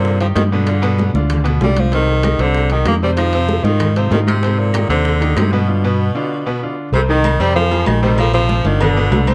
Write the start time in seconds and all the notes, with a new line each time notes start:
Already playing: G2 A#2 C3 C4 C5
0.05 high bongo, high conga
0.20 D#3 F3 D#4 G4, high bongo, high conga, high timbale
0.35 G2 D#3, high bongo, low bongo, high conga, high timbale, low timbale
0.52 B2 D3 B3 B4
0.67 D3 D4 F4, high bongo, high conga, high timbale
0.82 B2 B3 B4, high bongo, high conga, high timbale
0.98 high bongo, high conga, low timbale
1.14 D2 D3 D4 F4, high bongo, high conga
1.30 high bongo, high conga, low conga, high timbale
1.44 B2 B3 B4, high bongo, high conga, high timbale
1.61 C2 D3 G3 D4 F4, high bongo, low bongo, high conga, low timbale
1.77 F3, high conga, high timbale
1.92 C3 D#3 C4 C5, high bongo, high conga, high timbale
2.07 high bongo
2.23 D#3 D#4 G4, high bongo, high conga, high timbale, low timbale, claves
2.39 C2 C3 D3 C4 C5, high bongo, high conga, high timbale
2.55 high bongo, high conga
2.70 D#3 D#4 G4, high bongo, high conga, high timbale
2.85 F2 A#3, high bongo, low bongo, high conga, high timbale, low timbale, claves
3.02 C3 G3 C4 C5
3.17 D#3 F3 D#4 F4, high bongo, high conga, high timbale, claves
3.33 C3 C4 C5, high bongo, high conga, high timbale
3.49 high bongo, high conga, low timbale
3.64 G#2 D#3 D#4 F4, high bongo, high conga
3.80 high bongo, high conga, low conga, high timbale, claves
3.96 C3 F3 C4 C5, high bongo, high conga, high timbale
4.11 G#2 D#3 D#4 F4, high bongo, low bongo, high conga, low timbale
4.27 C3, high conga, high timbale, claves
4.42 C3 C4 C5, high bongo, high conga, high timbale
4.58 A#2, high bongo, high conga
4.74 D#3 D#4 G4, high bongo, high conga, high timbale, low timbale, claves
4.89 D#2 C3 D3 C4 C5, high bongo, high conga, high timbale
5.05 high bongo, high conga
5.21 D#3 D#4 G4, high bongo, high conga, high timbale
5.36 G2 C3, high bongo, low bongo, high conga, high timbale, low timbale, claves
5.52 B2 B3 B4
5.67 D3 D4 F4
5.84 B2 B3 B4
6.15 D3 D4 F4
6.46 B2 B3 B4
6.63 D3 D4 F4
6.92 C2 C3 C4 C5, cowbell, high conga, low agogo
7.08 D#3 D#4 G4, high conga
7.24 cowbell, high conga, low timbale, low agogo, claves
7.39 F2 C3 G3 C4 C5, cowbell, high conga, low agogo
7.55 F3 F4 G#4, cowbell, high conga
7.71 F3 F4 G#4, high conga, low agogo
7.86 A#1 D#3, cowbell, high conga, low timbale, low agogo, claves
8.02 C3 D#3 G3 C4 C5, cowbell, high conga
8.18 F3, cowbell, high conga, low agogo, claves
8.34 C3 F3 C4 C5, high conga, low agogo
8.49 F3, cowbell, high conga, low timbale
8.64 G1 D3 D#3 D4 F4, high conga
8.80 B2 D3 B3 B4, cowbell, high conga, low conga, low agogo, claves
8.97 B2 B3 B4, high conga
9.11 C2 D3, cowbell, high conga, low timbale, low agogo
9.27 C3 C4 C5, cowbell, high conga, low agogo, claves